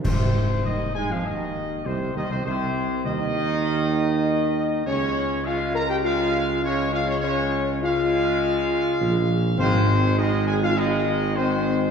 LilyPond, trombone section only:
\new Staff \with { instrumentName = "Trombone section" } { \clef bass \time 4/4 \key aes \major \tempo 4 = 101 c4 ees8 aes16 f16 ees4 c8 ees16 c16 | c4 ees2. | <des aes>4 <des aes>4 <des aes>4 <des aes>4 | <des aes>4 <des aes>2. |
<ees aes>4 <ees aes>4 <ees aes>4 <ees aes>4 | }